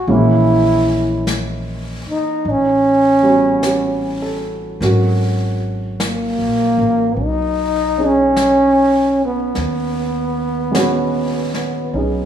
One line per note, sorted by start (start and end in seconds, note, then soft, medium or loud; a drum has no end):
0.00 0.13 F#4 medium
0.07 2.02 A#1 medium
0.07 2.45 E3 soft
0.07 2.45 G#3 soft
0.07 2.45 A#3 soft
0.07 2.45 C#4 soft
0.07 brush sweep soft
0.12 1.28 E4 medium
1.27 brush sweep soft
1.27 snare soft
1.27 hi-hat pedal medium
2.06 muted upright bass stroke soft
2.10 2.52 D#4 medium
2.45 4.77 A1 medium
2.45 brush sweep soft
2.51 4.45 C#4 medium
3.23 4.80 G3 soft
3.23 4.81 B3 soft
3.23 4.81 C#4 soft
3.27 4.82 F#4 soft
3.63 4.59 G4 soft
3.63 brush sweep soft
3.63 snare soft
3.63 hi-hat pedal soft
4.22 5.07 A4 soft
4.81 6.35 G#1 medium
4.81 9.57 F#3 soft
4.81 7.96 C#4 soft
4.81 9.57 F#4 soft
4.81 9.56 A#4 soft
4.81 brush sweep soft
4.81 snare soft
6.00 brush sweep soft
6.00 snare soft
6.00 hi-hat pedal soft
6.06 7.25 A#3 medium
6.38 6.75 A#1 soft
6.77 7.15 A1 medium
7.17 9.51 B1 medium
7.17 brush sweep soft
7.23 8.09 D#4 medium
7.98 9.56 C#4 soft
7.98 9.56 D#4 soft
7.98 9.57 G#4 soft
8.07 9.21 C#4 medium
8.37 brush sweep soft
8.37 snare soft
8.37 hi-hat pedal soft
9.26 12.25 B3 medium
9.55 11.91 D#2 medium
9.55 brush sweep soft
9.55 snare soft
10.71 12.25 G#3 soft
10.71 12.25 B3 soft
10.71 11.92 C#4 soft
10.71 brush sweep soft
10.71 snare soft
10.71 hi-hat pedal soft
10.76 12.25 F#4 soft
11.54 snare soft
11.94 12.25 B1 medium
11.94 12.25 C#4 soft
11.94 12.25 D#4 soft
11.94 brush sweep soft
11.98 12.25 G#4 soft